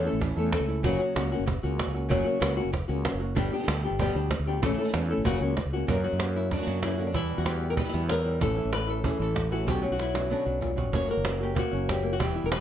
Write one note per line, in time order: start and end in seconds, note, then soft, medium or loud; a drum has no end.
0.04 0.20 A3 soft
0.04 0.21 A3 soft
0.04 0.21 C#4 soft
0.04 0.20 E4 soft
0.04 0.21 A4 soft
0.13 0.31 A1 medium
0.20 0.36 E3 medium
0.20 0.36 A3 medium
0.20 0.36 C#4 medium
0.20 0.35 E4 medium
0.20 muted nylon-string guitar stroke medium
0.20 cajon bass medium
0.20 cajon slap soft
0.36 0.55 E2 medium
0.36 0.52 A3 soft
0.36 0.53 A3 soft
0.36 0.52 C#4 soft
0.36 0.53 C#4 soft
0.36 0.52 E4 soft
0.36 0.52 A4 soft
0.52 0.83 A3 soft
0.52 0.83 C#4 soft
0.52 0.84 A4 medium
0.52 muted nylon-string guitar stroke medium
0.52 cajon bass medium
0.52 cajon slap medium
0.60 0.85 C#2 medium
0.68 0.84 A3 soft
0.68 0.84 C#4 soft
0.68 0.83 E4 soft
0.83 0.96 F#1 medium
0.83 0.99 C#3 medium
0.83 1.15 C#3 medium
0.83 0.99 F#3 medium
0.83 1.15 F#3 medium
0.83 0.99 A#3 medium
0.83 1.16 A#3 medium
0.83 0.99 C#4 medium
0.83 1.15 C#4 medium
0.83 0.98 F#4 medium
0.83 1.14 F#4 medium
0.83 cajon bass medium
0.99 1.15 A#3 soft
0.99 1.15 C#4 soft
0.99 1.15 F#4 medium
1.15 1.34 C#2 medium
1.15 1.31 F#3 soft
1.15 1.31 A#3 medium
1.15 1.46 A#3 soft
1.15 1.46 C#4 soft
1.15 1.31 C#4 medium
1.15 1.46 F#4 soft
1.15 1.31 F#4 medium
1.15 cajon slap medium
1.32 1.46 A#3 soft
1.32 1.45 C#4 medium
1.32 1.46 F#4 medium
1.39 1.57 F#1 medium
1.47 muted nylon-string guitar stroke soft
1.47 cajon bass medium
1.63 1.81 C#2 medium
1.63 2.08 A#3 soft
1.63 2.09 C#4 soft
1.63 2.09 F#4 soft
1.63 cajon slap soft
1.78 1.94 F#3 soft
1.78 1.94 A#3 soft
1.78 1.94 C#4 soft
1.78 1.93 F#4 soft
1.78 cajon bass medium
1.78 cajon slap medium
1.87 2.11 C#2 medium
1.94 2.09 A#3 soft
1.94 2.10 C#4 soft
1.94 2.09 F#4 soft
1.94 cajon slap soft
2.09 2.22 F#1 medium
2.09 2.25 C#3 medium
2.09 2.41 C#3 medium
2.09 2.25 F#3 medium
2.09 2.41 F#3 medium
2.09 2.25 A#3 medium
2.09 2.41 A#3 medium
2.09 2.24 C#4 medium
2.09 2.41 C#4 medium
2.09 2.23 F#4 medium
2.09 2.40 F#4 medium
2.09 cajon bass medium
2.24 2.39 A#3 soft
2.24 2.39 C#4 soft
2.24 2.40 F#4 medium
2.40 2.60 C#2 medium
2.40 2.56 F#3 medium
2.40 2.56 A#3 medium
2.40 2.72 A#3 soft
2.40 2.56 C#4 medium
2.40 2.73 C#4 soft
2.40 2.72 F#4 soft
2.40 2.55 F#4 medium
2.40 cajon slap loud
2.57 2.72 A#3 soft
2.57 2.72 C#4 medium
2.57 2.72 F#4 medium
2.65 2.83 F#1 medium
2.73 muted nylon-string guitar stroke medium
2.73 cajon bass medium
2.73 cajon slap soft
2.88 3.07 C#2 medium
2.88 3.36 A#3 soft
2.88 3.35 C#4 soft
2.88 3.35 F#4 soft
3.04 3.20 F#3 soft
3.04 3.20 A#3 soft
3.04 3.20 C#4 soft
3.04 3.18 F#4 soft
3.04 cajon bass medium
3.04 cajon slap medium
3.13 3.37 F#1 medium
3.19 3.36 A#3 soft
3.19 3.36 C#4 soft
3.19 3.35 F#4 soft
3.19 cajon slap soft
3.35 3.49 G1 medium
3.35 3.51 D3 medium
3.35 3.51 G3 medium
3.35 3.51 B3 medium
3.35 3.51 D4 medium
3.35 3.52 G4 medium
3.35 muted nylon-string guitar stroke medium
3.35 cajon bass medium
3.52 3.58 G3 soft
3.52 3.58 B3 soft
3.52 3.68 B3 soft
3.52 3.68 D4 soft
3.52 3.59 G4 soft
3.52 3.68 G4 medium
3.59 3.62 D3 soft
3.59 3.62 G3 soft
3.59 3.63 B3 soft
3.59 3.63 G4 soft
3.63 3.67 D3 soft
3.63 3.67 G3 soft
3.63 3.67 B3 medium
3.63 3.68 G4 medium
3.68 3.86 D2 medium
3.68 3.83 B2 medium
3.68 3.83 D3 medium
3.68 3.83 G3 medium
3.68 3.83 B3 medium
3.68 3.82 G4 medium
3.68 muted nylon-string guitar stroke medium
3.68 cajon slap loud
3.83 3.99 G3 soft
3.83 3.99 B3 soft
3.83 4.00 B3 soft
3.83 4.00 D4 medium
3.83 3.98 G4 soft
3.83 3.99 G4 medium
3.91 4.09 G1 medium
3.99 4.29 B2 medium
3.99 4.30 D3 medium
3.99 4.15 D3 medium
3.99 4.30 G3 medium
3.99 4.15 G3 medium
3.99 4.30 B3 medium
3.99 4.15 B3 medium
3.99 4.14 D4 medium
3.99 4.31 G4 medium
3.99 4.14 G4 medium
3.99 cajon bass medium
4.15 4.33 D2 medium
4.15 4.31 B3 soft
4.15 4.30 D4 medium
4.15 4.30 G4 soft
4.15 cajon slap soft
4.31 muted nylon-string guitar stroke soft
4.31 cajon bass medium
4.31 cajon slap medium
4.39 4.63 D2 medium
4.47 4.63 B3 soft
4.47 4.62 D4 soft
4.47 4.62 G4 medium
4.47 cajon slap soft
4.62 4.75 A1 medium
4.62 4.77 C#3 medium
4.62 4.77 E3 medium
4.62 4.78 A3 medium
4.62 4.78 C#4 medium
4.62 4.77 A4 medium
4.62 muted nylon-string guitar stroke medium
4.62 cajon bass medium
4.78 4.93 A3 soft
4.78 4.83 A3 soft
4.78 4.83 C#4 soft
4.78 4.93 C#4 soft
4.78 4.84 E4 soft
4.78 4.93 A4 medium
4.84 4.87 E3 soft
4.84 4.88 A3 soft
4.84 4.88 C#4 soft
4.84 4.88 E4 soft
4.88 4.92 E3 soft
4.88 4.92 A3 soft
4.88 4.93 C#4 soft
4.88 4.93 E4 medium
4.93 5.12 E2 medium
4.93 5.08 E3 medium
4.93 5.09 A3 medium
4.93 5.09 C#4 medium
4.93 5.08 E4 medium
4.93 muted nylon-string guitar stroke medium
4.93 cajon slap loud
5.09 5.25 A3 soft
5.09 5.24 C#4 soft
5.09 5.24 E4 soft
5.09 5.25 A4 medium
5.18 5.24 A1 medium
5.24 5.37 F#1 medium
5.24 5.55 C#3 medium
5.24 5.40 C#3 medium
5.24 5.56 F#3 medium
5.24 5.40 F#3 medium
5.24 5.56 A#3 medium
5.24 5.41 A#3 medium
5.24 5.41 C#4 medium
5.24 5.56 C#4 medium
5.24 5.40 F#4 medium
5.24 5.57 F#4 medium
5.24 cajon bass medium
5.41 5.59 C#2 medium
5.41 5.56 A#3 soft
5.41 5.57 C#4 soft
5.41 5.56 F#4 soft
5.41 cajon slap soft
5.56 muted nylon-string guitar stroke medium
5.56 cajon bass medium
5.56 cajon slap medium
5.65 5.83 C#2 medium
5.73 5.89 A#3 soft
5.73 5.88 C#4 soft
5.73 5.88 F#4 soft
5.87 7.14 F#2 medium
5.87 6.07 F#2 medium
5.87 6.19 C#3 medium
5.87 6.19 F#3 medium
5.87 6.19 A#3 medium
5.87 6.18 C#4 medium
5.87 6.17 F#4 medium
5.87 6.04 A#4 medium
5.87 cajon bass medium
6.04 6.50 F#3 medium
6.04 6.67 F#4 medium
6.13 6.54 F#2 medium
6.18 7.13 A#3 soft
6.18 6.50 A#3 soft
6.18 6.50 C#4 soft
6.18 6.50 F#4 soft
6.18 cajon slap loud
6.36 6.52 E4 medium
6.51 7.13 F#3 medium
6.51 6.83 D4 medium
6.51 muted nylon-string guitar stroke soft
6.51 cajon bass medium
6.51 cajon slap soft
6.57 6.60 F#3 soft
6.57 6.61 A#3 soft
6.57 6.61 C#4 soft
6.57 6.61 F#4 soft
6.61 6.65 F#3 medium
6.61 6.65 A#3 soft
6.61 6.66 C#4 medium
6.61 6.66 F#4 medium
6.66 7.14 F#2 medium
6.66 6.82 C#3 medium
6.66 6.81 F#3 medium
6.66 6.81 A#3 medium
6.66 6.82 C#4 medium
6.66 6.82 F#4 medium
6.82 6.98 C#3 medium
6.82 6.98 F#3 soft
6.82 6.98 A#3 soft
6.82 6.98 C#4 soft
6.82 7.07 E4 medium
6.82 6.96 F#4 soft
6.82 cajon slap medium
6.97 7.14 D3 medium
6.97 7.14 A#3 soft
6.97 7.14 C#4 soft
6.97 7.13 F#4 soft
7.07 7.15 D4 medium
7.13 7.32 E2 medium
7.13 7.44 B2 medium
7.13 7.45 E3 medium
7.13 8.39 E3 medium
7.13 7.45 G3 medium
7.13 7.45 B3 medium
7.13 7.44 E4 medium
7.13 7.45 E4 medium
7.13 cajon bass medium
7.30 7.75 G3 medium
7.38 7.80 E2 medium
7.38 7.70 F#4 medium
7.45 7.76 G3 soft
7.45 7.77 B3 soft
7.45 7.76 E4 soft
7.45 8.01 G4 medium
7.45 cajon slap medium
7.61 8.39 B3 soft
7.70 7.77 A#4 medium
7.77 7.83 E3 soft
7.77 8.08 G3 medium
7.77 7.83 G3 soft
7.77 7.83 B3 soft
7.77 8.09 B4 medium
7.77 muted nylon-string guitar stroke soft
7.77 cajon bass medium
7.81 7.87 E3 soft
7.81 7.87 G3 medium
7.81 7.88 B3 medium
7.81 7.84 E4 soft
7.85 7.92 E3 medium
7.85 7.92 G3 medium
7.85 7.88 E4 medium
7.89 8.08 B2 medium
7.89 8.07 E3 medium
7.89 7.93 B3 medium
7.89 7.93 E4 medium
7.93 8.43 E2 medium
7.93 8.08 G3 medium
7.93 8.08 B3 medium
7.93 8.09 E4 medium
7.93 cajon slap soft
8.08 8.24 E3 soft
8.08 8.24 F#3 medium
8.08 8.24 G3 soft
8.08 8.25 B3 soft
8.08 8.23 E4 soft
8.08 8.42 A#4 medium
8.08 cajon slap medium
8.24 8.40 G3 medium
8.24 8.40 G3 soft
8.24 8.41 B3 soft
8.24 8.40 E4 soft
8.24 cajon slap soft
8.39 8.59 A1 medium
8.39 9.64 A2 medium
8.39 8.56 E3 medium
8.39 8.56 A3 medium
8.39 8.56 C#4 medium
8.39 8.55 E4 medium
8.39 8.73 A4 medium
8.39 cajon bass medium
8.56 9.03 E3 medium
8.56 8.71 A3 soft
8.56 8.71 C#4 soft
8.56 8.72 E4 soft
8.65 9.07 A1 medium
8.72 8.90 B4 medium
8.72 muted nylon-string guitar stroke soft
8.72 cajon slap medium
8.87 9.03 A3 soft
8.87 9.03 C#4 soft
8.87 9.03 E4 soft
8.87 9.05 A4 medium
9.04 9.19 E3 medium
9.04 9.50 E3 medium
9.04 9.19 A3 medium
9.04 9.20 C#4 medium
9.04 9.18 E4 medium
9.04 9.22 G#4 medium
9.04 cajon bass medium
9.20 9.68 A1 medium
9.20 9.34 A3 soft
9.20 9.35 C#4 soft
9.20 9.35 E4 soft
9.20 9.52 A4 medium
9.35 muted nylon-string guitar stroke soft
9.35 cajon bass medium
9.35 cajon slap medium
9.51 9.67 E3 medium
9.51 9.68 A3 soft
9.51 9.67 C#4 soft
9.51 9.67 E4 soft
9.51 9.68 F#4 medium
9.51 cajon slap soft
9.67 9.86 B1 medium
9.67 10.93 B2 medium
9.67 9.82 B2 medium
9.67 9.82 D3 medium
9.67 9.83 B3 medium
9.67 9.82 C#4 medium
9.67 9.80 F#4 medium
9.67 9.91 G4 medium
9.67 cajon bass medium
9.81 10.28 F#3 medium
9.81 9.97 B3 soft
9.81 9.97 C#4 soft
9.81 9.97 F#4 soft
9.91 10.33 B1 medium
9.91 10.31 F#4 medium
9.98 10.32 E4 medium
9.98 muted nylon-string guitar stroke soft
9.98 cajon slap medium
10.14 10.92 B3 soft
10.14 10.30 B3 soft
10.14 10.30 C#4 soft
10.14 10.29 F#4 soft
10.14 cajon slap medium
10.29 10.45 B2 medium
10.29 10.45 D3 medium
10.29 10.91 F#3 medium
10.29 10.46 B3 medium
10.29 10.45 C#4 medium
10.29 10.95 D4 medium
10.29 10.44 F#4 medium
10.45 10.94 B1 medium
10.45 10.60 B3 soft
10.45 10.61 C#4 soft
10.45 10.61 F#4 soft
10.61 10.76 A#2 medium
10.61 muted nylon-string guitar stroke soft
10.61 cajon bass medium
10.76 10.92 G2 medium
10.76 10.94 B3 soft
10.76 10.93 C#4 soft
10.76 10.93 F#4 soft
10.76 cajon bass medium
10.92 11.12 F#1 medium
10.92 12.19 F#2 medium
10.92 11.08 C#3 medium
10.92 11.09 F#3 medium
10.92 11.09 A#3 medium
10.92 11.09 C#4 medium
10.92 11.08 F#4 medium
10.92 11.10 C#5 medium
10.92 cajon bass medium
11.07 11.54 A#3 medium
11.07 11.24 A#3 soft
11.07 11.25 C#4 soft
11.07 11.24 F#4 soft
11.07 11.57 A#4 medium
11.17 11.59 F#1 medium
11.24 11.40 F#3 soft
11.24 11.40 A#3 soft
11.24 11.40 C#4 soft
11.24 11.39 F#4 soft
11.24 cajon slap loud
11.40 11.56 A#3 soft
11.40 11.56 C#4 soft
11.40 11.56 F#4 soft
11.40 11.58 G4 medium
11.55 12.02 A#3 medium
11.55 12.12 F#4 medium
11.55 muted nylon-string guitar stroke soft
11.55 cajon bass medium
11.71 12.20 F#1 medium
11.71 12.20 A#3 soft
11.71 12.17 C#4 soft
11.71 12.20 C#4 soft
11.71 12.19 F#4 soft
11.89 12.13 G4 medium
11.89 cajon bass medium
11.89 cajon slap medium
12.03 12.18 A#3 medium
12.13 12.20 F#4 medium
12.19 12.38 E1 medium
12.19 12.35 B2 medium
12.19 12.60 E3 medium
12.19 12.35 E3 medium
12.19 12.35 G3 medium
12.19 12.36 B3 medium
12.19 12.34 E4 medium
12.19 12.60 G4 medium
12.19 cajon bass medium
12.35 12.51 G3 soft
12.35 12.52 B3 soft
12.35 12.60 E4 medium
12.35 12.51 E4 soft
12.44 12.60 E1 medium
12.44 12.52 A#4 medium
12.52 12.60 E3 soft
12.52 12.60 G3 soft
12.52 12.60 B3 soft
12.52 12.60 E4 soft
12.52 12.60 B4 medium
12.52 cajon slap medium